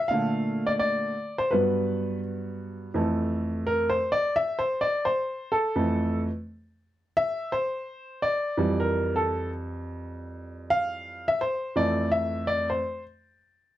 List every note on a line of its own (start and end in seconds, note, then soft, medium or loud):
0.00 0.10 E5 loud
0.08 1.13 A#2 medium
0.08 1.13 D3 medium
0.08 1.14 A3 medium
0.08 0.69 F5 medium
0.67 0.72 D5 medium
0.79 1.40 D5 medium
1.38 1.52 C5 medium
1.51 2.90 G2 medium
1.51 2.90 F#3 medium
1.51 2.90 B3 medium
1.51 2.18 B4 medium
2.94 3.96 F2 medium
2.94 3.96 E3 soft
2.94 3.96 A3 medium
3.67 3.87 A#4 medium
3.90 4.11 C5 medium
4.12 4.36 D5 medium
4.36 4.60 E5 loud
4.59 4.83 C5 medium
4.81 5.06 D5 medium
5.05 5.54 C5 medium
5.52 6.19 A4 medium
5.76 6.26 F2 medium
5.76 6.27 E3 soft
5.76 6.27 A3 medium
7.17 7.53 E5 loud
7.52 8.25 C5 medium
8.22 8.76 D5 medium
8.57 11.36 F2 medium
8.57 11.37 E3 soft
8.57 11.37 G3 medium
8.80 9.17 A#4 medium
9.16 9.49 A4 medium
10.70 11.30 F5 loud
11.28 11.41 E5 loud
11.41 11.77 C5 medium
11.76 12.78 F2 medium
11.76 12.78 E3 soft
11.76 12.78 A3 medium
11.76 12.09 D5 medium
12.12 12.48 E5 medium
12.47 12.68 D5 medium
12.70 13.02 C5 medium